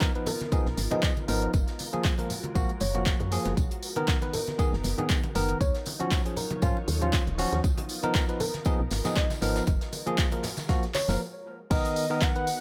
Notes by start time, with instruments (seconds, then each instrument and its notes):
Already playing: tine electric piano F3 B3 D#4 A#4, string machine B3 D#4 F4 A#4
0.01 kick, snare, clap, closed hi-hat, tambourine
0.15 tine electric piano F3 B3 D#4 B4, closed hi-hat
0.26 fm electric piano A#4, open hi-hat, tambourine, muted conga, low conga
0.41 snare, closed hi-hat, high conga
0.52 tine electric piano F3 B3 D#4 G#4, kick, closed hi-hat, tambourine, muted conga
0.66 fm bass B1, snare
0.77 fm bass G#1, snare, open hi-hat, tambourine, high conga
0.91 tine electric piano F3 B3 D#4 G#4, fm electric piano D#5, closed hi-hat, muted conga, low conga
1.03 fm electric piano D#5, kick, snare, clap, closed hi-hat, tambourine
1.17 closed hi-hat, muted conga, high conga
1.28 fm bass G#1, tine electric piano F3 B3 D#4 A#4, snare, open hi-hat, tambourine
1.42 closed hi-hat
1.53 fm bass F#1, string machine G#3 F#4 A#4, kick, closed hi-hat, tambourine, muted conga, high conga
1.67 snare, closed hi-hat
1.79 open hi-hat, tambourine, muted conga
1.93 tine electric piano F3 A#3 G#4, closed hi-hat, high conga
2.04 kick, snare, clap, closed hi-hat, tambourine
2.18 tine electric piano F3 A#3 A#4, closed hi-hat, muted conga
2.30 open hi-hat, tambourine, low conga
2.44 closed hi-hat, muted conga, high conga
2.55 fm bass A#1, tine electric piano F3 A#3 F#4, kick, closed hi-hat, tambourine
2.69 closed hi-hat
2.80 fm bass F#1, fm electric piano C#5, open hi-hat, tambourine, muted conga, high conga
2.94 tine electric piano F3 A#3 F#4, closed hi-hat, low conga
3.06 kick, snare, clap, closed hi-hat, tambourine, muted conga
3.20 fm bass F#2, closed hi-hat, high conga
3.31 tine electric piano F3 A#3 G#4, open hi-hat, tambourine
3.46 fm bass F#1, snare, closed hi-hat, muted conga
3.57 fm bass B1, string machine B3 D#4 A#4, kick, closed hi-hat, tambourine, muted conga, high conga
3.71 closed hi-hat
3.83 open hi-hat, tambourine
3.96 tine electric piano D#3 B3 A#4, closed hi-hat, muted conga, high conga
4.07 kick, snare, clap, closed hi-hat, tambourine
4.21 tine electric piano D#3 B3 B4, closed hi-hat, muted conga
4.33 fm electric piano A#4, open hi-hat, tambourine, low conga
4.47 snare, closed hi-hat, high conga
4.58 tine electric piano D#3 B3 G#4, kick, closed hi-hat, tambourine, muted conga
4.73 fm bass F#1, snare
4.84 fm bass F#1, snare, open hi-hat, tambourine, muted conga, high conga
4.98 tine electric piano D#3 B3 G#4, closed hi-hat, low conga
5.09 kick, snare, clap, closed hi-hat, tambourine
5.24 closed hi-hat, muted conga, high conga
5.35 fm bass F#1, tine electric piano D#3 B3 A#4, snare, open hi-hat, tambourine
5.49 closed hi-hat, muted conga
5.61 fm bass D#2, string machine F#3 F4 C#5, fm electric piano C#5, kick, closed hi-hat, tambourine, high conga
5.74 snare, closed hi-hat
5.86 open hi-hat, tambourine, muted conga
5.99 tine electric piano F3 C#4 F#4, closed hi-hat, high conga
6.11 kick, snare, clap, closed hi-hat, tambourine, muted conga
6.25 tine electric piano F3 C#4 G#4, closed hi-hat
6.36 fm electric piano A#4, open hi-hat, tambourine, low conga
6.51 closed hi-hat, muted conga, high conga
6.62 fm bass G#2, tine electric piano F3 C#4 F4, kick, closed hi-hat, tambourine
6.77 muted conga
6.88 fm bass D#2, open hi-hat, tambourine, high conga
7.01 tine electric piano F3 C#4 F4, closed hi-hat, low conga
7.13 kick, snare, clap, closed hi-hat, tambourine, muted conga
7.27 fm bass D#1, closed hi-hat, high conga
7.38 tine electric piano F3 C#4 F#4, open hi-hat, tambourine, muted conga
7.52 fm bass D#2, snare, closed hi-hat
7.64 fm bass C#2, string machine B3 A#4, kick, closed hi-hat, tambourine, high conga
7.78 closed hi-hat, muted conga
7.89 open hi-hat, tambourine
8.03 tine electric piano F3 B3 D#4 A#4, closed hi-hat, muted conga, high conga
8.14 kick, snare, clap, closed hi-hat, tambourine
8.28 tine electric piano F3 B3 D#4 B4, closed hi-hat
8.40 fm electric piano A#4, open hi-hat, tambourine, muted conga, low conga
8.54 snare, closed hi-hat, high conga
8.65 tine electric piano F3 B3 D#4 G#4, kick, closed hi-hat, tambourine, muted conga
8.80 fm bass B1
8.91 fm bass G#1, snare, open hi-hat, tambourine, high conga
9.05 tine electric piano F3 B3 D#4 G#4, fm electric piano D#5, snare, closed hi-hat, tambourine, muted conga, low conga
9.16 fm electric piano D#5, kick, snare, clap, closed hi-hat, tambourine
9.30 snare, closed hi-hat, tambourine, muted conga, high conga
9.41 fm bass G#1, tine electric piano F3 B3 D#4 A#4, snare, open hi-hat, tambourine
9.56 snare, closed hi-hat, tambourine
9.67 fm bass F#1, string machine G#3 F#4 A#4, kick, closed hi-hat, tambourine, muted conga, high conga
9.81 snare, closed hi-hat
9.93 open hi-hat, tambourine, muted conga
10.06 tine electric piano F3 A#3 G#4, closed hi-hat, high conga
10.18 kick, snare, clap, closed hi-hat, tambourine
10.32 tine electric piano F3 A#3 A#4, closed hi-hat, muted conga
10.43 snare, open hi-hat, tambourine, low conga
10.57 snare, closed hi-hat, tambourine, muted conga, high conga
10.69 tine electric piano F3 A#3 F#4, kick, snare, closed hi-hat, tambourine
10.83 snare, closed hi-hat
10.94 fm electric piano C#5, snare, clap, open hi-hat, tambourine, muted conga, high conga
11.08 fm bass F#1, tine electric piano F3 A#3 A#4, snare, open hi-hat, tambourine, low conga
11.70 fm bass B1, tine electric piano D#3 B3 A#4, string machine B3 D#4 F#4 A#4, soft synth lead D#5, kick, closed hi-hat, crash, tambourine
11.85 closed hi-hat
11.96 open hi-hat, tambourine
12.10 tine electric piano D#3 B3 A#4
12.21 soft synth lead F#5, kick, snare, clap, closed hi-hat, tambourine
12.35 tine electric piano D#3 B3 B4, closed hi-hat
12.47 open hi-hat, tambourine